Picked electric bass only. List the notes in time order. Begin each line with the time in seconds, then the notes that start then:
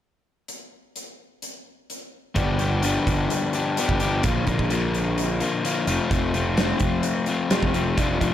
2.36 G1
3.07 G1
3.89 G1
4.24 A#1
4.47 A#1
4.59 A#1
5.87 F1
6.11 F1
6.80 F1
7.63 F1
7.98 F1
8.21 F1